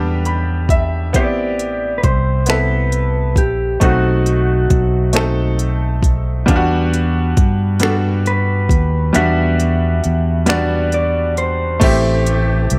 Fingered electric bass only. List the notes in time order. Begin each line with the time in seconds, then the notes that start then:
Already playing: E2
1.16 A1
2.04 C2
3.37 A#1
3.82 B1
4.71 B1
6.49 E2
7.38 G2
8.70 D#2
9.16 E2
10.05 E2
11.82 A1
12.72 C2